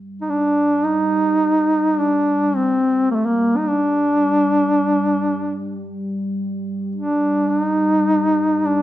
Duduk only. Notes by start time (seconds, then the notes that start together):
0.22 D#4
0.30 D4
0.85 D#4
1.98 D4
2.56 C4
3.11 A#3
3.15 A3
3.26 A#3
3.57 D#4
3.68 D4
6.96 D4
7.50 D4
7.61 D#4
8.65 D4